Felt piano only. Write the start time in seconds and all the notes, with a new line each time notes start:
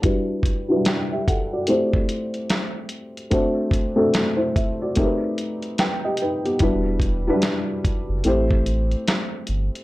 0.02 G3 D4 E4 F#4 B4
0.69 F#3 D4 E4 F#4 B4
0.76 G3
0.87 B4 G5
1.12 G4 E5
1.28 A4 F#5
1.53 F#4 D5
1.68 A3 C4 E4 G4 C5
3.31 A3 C4 D4 F#4 C5
3.96 A3 C4 D4 F#4 A4
4.37 E4 C5
4.56 E5
4.82 F#4 D5
4.96 A3 C4 D#4 G4 A#4
5.05 B4
5.80 B4 G5
6.05 G4 D#5
6.22 D#4 B4
6.45 B3 G4
6.61 G3 D4 E4 F#4 B4
7.27 F#3 D4 E4 F#4 B4
7.33 G3
8.25 A3 C4 E4 G4 C5